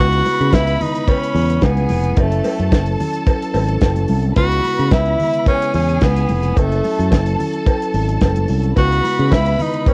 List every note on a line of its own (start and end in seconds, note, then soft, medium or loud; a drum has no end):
0.00 0.21 C#2 loud
0.00 2.15 C#3 medium
0.00 2.15 G#3 medium
0.00 2.15 B3 medium
0.00 9.94 E4 medium
0.00 0.56 F#4 loud
0.00 1.59 B4 medium
0.00 1.59 B5 loud
0.12 closed hi-hat soft
0.25 open hi-hat medium
0.25 muted conga medium
0.40 0.54 C#3 loud
0.40 closed hi-hat soft
0.53 0.76 C#2 loud
0.53 0.83 E4 loud
0.53 kick loud
0.53 snare loud
0.53 closed hi-hat medium
0.53 cowbell medium
0.53 high conga medium
0.67 closed hi-hat soft
0.81 1.10 D#4 loud
0.81 open hi-hat medium
0.81 muted conga medium
0.81 low conga medium
0.95 closed hi-hat medium
1.08 1.65 C#4 loud
1.08 kick loud
1.08 closed hi-hat medium
1.08 cowbell medium
1.08 muted conga soft
1.24 closed hi-hat medium
1.35 1.58 E2 loud
1.35 open hi-hat medium
1.35 muted conga medium
1.50 closed hi-hat medium
1.61 1.85 C#2 loud
1.61 2.21 B3 medium
1.61 2.16 G#4 medium
1.61 2.16 G#5 loud
1.61 kick loud
1.61 snare loud
1.61 closed hi-hat medium
1.61 cowbell medium
1.61 high conga medium
1.77 closed hi-hat medium
1.77 high conga medium
1.89 2.13 F1 medium
1.89 open hi-hat medium
1.89 high conga medium
2.04 closed hi-hat soft
2.17 2.40 F#1 loud
2.17 4.34 F#3 medium
2.17 3.01 A3 medium
2.17 4.35 C#4 medium
2.17 4.35 A4 medium
2.17 4.33 A4 medium
2.17 4.33 A5 loud
2.17 kick loud
2.17 closed hi-hat medium
2.17 cowbell medium
2.32 closed hi-hat soft
2.44 open hi-hat medium
2.44 cowbell medium
2.44 muted conga medium
2.59 2.70 F#2 loud
2.59 closed hi-hat soft
2.72 2.95 F#1 medium
2.72 kick loud
2.72 snare loud
2.72 closed hi-hat medium
2.72 cowbell medium
2.72 high conga medium
2.86 closed hi-hat soft
3.00 open hi-hat medium
3.00 muted conga medium
3.00 low conga medium
3.13 closed hi-hat medium
3.27 kick loud
3.27 closed hi-hat medium
3.27 cowbell medium
3.27 muted conga soft
3.42 closed hi-hat medium
3.54 3.77 G#1 loud
3.54 open hi-hat medium
3.54 cowbell medium
3.54 muted conga medium
3.69 closed hi-hat medium
3.81 4.05 F#1 medium
3.81 kick loud
3.81 snare loud
3.81 closed hi-hat medium
3.81 cowbell medium
3.81 high conga medium
3.96 closed hi-hat medium
3.96 high conga medium
4.08 4.32 C2 loud
4.08 open hi-hat medium
4.08 high conga medium
4.23 closed hi-hat soft
4.36 4.60 C#2 loud
4.36 6.54 C#3 medium
4.36 6.54 G#3 medium
4.36 6.54 B3 medium
4.36 4.94 F#4 loud
4.36 5.45 B4 medium
4.36 5.45 B5 loud
4.36 kick loud
4.36 closed hi-hat medium
4.36 cowbell medium
4.52 closed hi-hat soft
4.64 open hi-hat medium
4.64 muted conga medium
4.79 4.93 C#3 medium
4.79 closed hi-hat soft
4.91 5.15 C#2 loud
4.91 5.47 E4 loud
4.91 kick loud
4.91 snare loud
4.91 closed hi-hat medium
4.91 cowbell medium
4.91 high conga medium
5.06 closed hi-hat soft
5.20 open hi-hat medium
5.20 muted conga soft
5.20 low conga medium
5.34 closed hi-hat medium
5.47 5.73 C#4 loud
5.47 6.55 G#4 medium
5.47 6.55 G#5 loud
5.47 kick loud
5.47 closed hi-hat medium
5.47 cowbell medium
5.47 muted conga soft
5.62 closed hi-hat medium
5.74 5.97 E2 medium
5.74 6.04 C#4 medium
5.74 open hi-hat medium
5.74 muted conga medium
5.89 closed hi-hat medium
6.01 6.25 C#2 medium
6.01 6.60 B3 medium
6.01 kick loud
6.01 snare loud
6.01 closed hi-hat medium
6.01 cowbell medium
6.01 high conga medium
6.16 closed hi-hat medium
6.16 high conga medium
6.29 6.52 F1 loud
6.29 open hi-hat medium
6.29 high conga medium
6.43 closed hi-hat medium
6.56 6.80 F#1 loud
6.56 8.74 F#3 medium
6.56 7.40 A3 loud
6.56 8.74 C#4 medium
6.56 8.74 A4 medium
6.56 8.73 A4 medium
6.56 8.73 A5 loud
6.56 kick loud
6.56 closed hi-hat medium
6.56 cowbell medium
6.72 closed hi-hat soft
6.84 open hi-hat medium
6.84 muted conga medium
6.99 7.10 F#2 medium
6.99 closed hi-hat soft
7.11 7.35 F#1 medium
7.11 kick loud
7.11 snare loud
7.11 closed hi-hat medium
7.11 cowbell medium
7.11 high conga medium
7.26 closed hi-hat medium
7.40 open hi-hat medium
7.40 muted conga medium
7.40 low conga medium
7.53 closed hi-hat medium
7.66 kick loud
7.66 closed hi-hat medium
7.66 cowbell medium
7.82 closed hi-hat medium
7.94 8.17 G#1 loud
7.94 open hi-hat medium
7.94 muted conga soft
8.09 closed hi-hat medium
8.21 8.45 F#1 loud
8.21 kick loud
8.21 snare loud
8.21 closed hi-hat medium
8.21 cowbell medium
8.21 high conga medium
8.36 closed hi-hat medium
8.36 high conga medium
8.48 8.72 C2 loud
8.48 open hi-hat medium
8.48 high conga medium
8.63 closed hi-hat soft
8.76 9.00 C#2 loud
8.76 9.94 C#3 medium
8.76 9.94 G#3 medium
8.76 9.94 B3 medium
8.76 9.35 F#4 loud
8.76 9.94 B4 medium
8.76 9.94 B5 loud
8.76 kick loud
8.76 closed hi-hat medium
8.76 cowbell medium
8.92 closed hi-hat soft
9.04 open hi-hat medium
9.04 muted conga medium
9.19 9.33 C#3 loud
9.19 closed hi-hat soft
9.31 9.55 C#2 loud
9.31 9.63 E4 loud
9.31 kick loud
9.31 snare loud
9.31 closed hi-hat medium
9.31 cowbell medium
9.31 high conga medium
9.46 closed hi-hat soft
9.59 9.91 D#4 medium
9.59 open hi-hat medium
9.59 muted conga medium
9.59 low conga medium
9.74 closed hi-hat medium
9.86 9.94 C#4 loud
9.86 kick loud
9.86 closed hi-hat medium
9.86 cowbell medium
9.86 muted conga soft